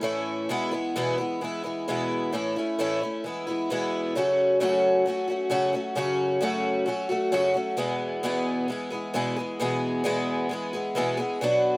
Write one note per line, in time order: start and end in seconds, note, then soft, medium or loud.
0.01 0.48 A2 medium
0.01 0.50 E3 medium
0.01 0.49 A3 medium
0.01 0.50 C#4 medium
0.01 0.51 E4 medium
0.49 0.72 E2 medium
0.49 0.72 B2 medium
0.49 0.73 E3 medium
0.49 0.73 G#3 medium
0.49 0.71 B3 medium
0.49 0.70 E4 medium
0.71 0.95 E3 soft
0.71 0.96 G#3 soft
0.71 0.95 B3 medium
0.71 0.95 E4 medium
0.96 1.18 E2 medium
0.96 1.19 B2 medium
0.96 1.19 E3 medium
0.96 1.19 G#3 medium
0.96 1.18 B3 medium
0.96 1.16 E4 medium
1.18 1.40 E3 soft
1.18 1.41 G#3 soft
1.18 1.42 B3 soft
1.18 1.41 E4 soft
1.41 1.64 E3 medium
1.41 1.65 G#3 medium
1.41 1.64 B3 medium
1.41 1.62 E4 medium
1.64 1.87 E3 soft
1.64 1.88 G#3 soft
1.64 1.87 B3 soft
1.64 1.87 E4 medium
1.88 2.33 E2 medium
1.88 2.32 B2 medium
1.88 2.32 E3 medium
1.88 2.33 G#3 medium
1.88 2.34 B3 medium
1.88 2.34 E4 medium
2.33 2.55 A2 medium
2.33 2.56 E3 medium
2.33 2.56 A3 medium
2.33 2.56 C#4 medium
2.33 2.55 E4 medium
2.56 2.79 A3 soft
2.56 2.79 C#4 medium
2.56 2.79 E4 medium
2.79 3.01 A2 medium
2.79 3.02 E3 medium
2.79 3.02 A3 medium
2.79 3.02 C#4 medium
2.79 3.00 E4 medium
3.01 3.25 A3 soft
3.01 3.25 C#4 soft
3.01 3.24 E4 soft
3.24 3.47 E3 medium
3.24 3.48 G#3 medium
3.24 3.47 B3 medium
3.24 3.46 E4 medium
3.47 3.70 E3 soft
3.47 3.70 G#3 soft
3.47 3.70 B3 soft
3.47 3.70 E4 medium
3.70 4.15 E2 medium
3.70 4.15 B2 medium
3.70 4.16 E3 medium
3.70 4.16 G#3 medium
3.70 4.16 B3 medium
3.70 4.17 E4 medium
4.15 4.59 F#2 medium
4.15 4.60 C#3 medium
4.15 4.60 F#3 medium
4.15 4.61 A3 medium
4.15 4.61 C#4 medium
4.15 4.62 F#4 medium
4.60 5.06 F#2 medium
4.60 5.06 C#3 medium
4.60 5.04 F#3 medium
4.60 5.06 A3 medium
4.60 5.07 C#4 medium
4.60 5.07 F#4 loud
5.06 5.29 F#3 medium
5.06 5.29 A3 medium
5.06 5.28 C#4 medium
5.06 5.26 F#4 medium
5.28 5.50 A3 soft
5.28 5.50 C#4 medium
5.28 5.51 F#4 medium
5.32 5.50 F#3 soft
5.50 5.73 F#2 medium
5.50 5.74 C#3 medium
5.50 5.74 F#3 medium
5.50 5.74 A3 medium
5.50 5.73 C#4 medium
5.50 5.72 F#4 medium
5.73 5.95 F#3 soft
5.73 5.96 A3 medium
5.73 5.96 C#4 medium
5.73 5.96 F#4 medium
5.95 6.39 F#2 medium
5.95 6.40 C#3 medium
5.95 6.41 F#3 medium
5.95 6.41 A3 medium
5.95 6.42 C#4 medium
5.95 6.42 F#4 medium
6.41 6.87 F#2 medium
6.41 6.87 C#3 medium
6.41 6.84 F#3 medium
6.41 6.86 A3 medium
6.41 6.87 C#4 medium
6.41 6.88 F#4 medium
6.86 7.09 F#3 medium
6.86 7.10 A3 medium
6.86 7.09 C#4 medium
6.86 7.08 F#4 medium
7.09 7.31 F#3 soft
7.09 7.32 A3 medium
7.09 7.33 C#4 medium
7.09 7.32 F#4 medium
7.32 7.55 F#2 medium
7.32 7.55 C#3 medium
7.32 7.56 F#3 medium
7.32 7.55 A3 medium
7.32 7.54 C#4 medium
7.32 7.53 F#4 medium
7.54 7.77 F#3 soft
7.54 7.78 A3 medium
7.54 7.78 C#4 soft
7.54 7.78 F#4 medium
7.77 8.22 E2 medium
7.77 8.22 B2 medium
7.77 8.23 E3 medium
7.77 8.23 G#3 medium
7.77 8.25 B3 loud
7.77 8.24 G#4 medium
8.23 8.69 E2 medium
8.23 8.69 B2 medium
8.23 8.67 E3 medium
8.23 8.68 G#3 medium
8.23 8.70 B3 medium
8.23 8.70 G#4 medium
8.68 8.91 E3 medium
8.68 8.92 G#3 medium
8.68 8.91 B3 medium
8.68 8.89 G#4 medium
8.90 9.14 E3 soft
8.90 9.14 G#3 soft
8.90 9.14 B3 medium
8.90 9.14 G#4 medium
9.14 9.37 E2 medium
9.14 9.37 B2 medium
9.14 9.37 E3 medium
9.14 9.37 G#3 medium
9.14 9.37 B3 medium
9.14 9.35 G#4 medium
9.36 9.59 E3 soft
9.36 9.60 G#3 medium
9.36 9.60 B3 medium
9.36 9.59 G#4 medium
9.60 10.03 E2 medium
9.60 10.03 B2 medium
9.60 10.04 E3 medium
9.60 10.04 G#3 medium
9.60 10.05 B3 medium
9.60 10.05 G#4 loud
10.04 10.50 E2 medium
10.04 10.50 B2 medium
10.04 10.48 E3 loud
10.04 10.50 G#3 loud
10.04 10.51 B3 loud
10.04 10.51 G#4 medium
10.49 10.73 E3 medium
10.49 10.73 G#3 medium
10.49 10.73 B3 medium
10.49 10.72 G#4 medium
10.73 10.95 E3 soft
10.73 10.96 G#3 medium
10.73 10.96 B3 medium
10.73 10.96 G#4 medium
10.95 11.18 E2 medium
10.95 11.18 B2 medium
10.95 11.19 E3 medium
10.95 11.18 G#3 medium
10.95 11.18 B3 medium
10.95 11.16 G#4 medium
11.17 11.42 E3 soft
11.17 11.42 G#3 medium
11.17 11.41 B3 soft
11.17 11.40 G#4 medium
11.41 11.77 B2 medium
11.41 11.77 F#3 medium
11.41 11.77 B3 medium
11.41 11.77 D4 loud
11.41 11.77 F#4 medium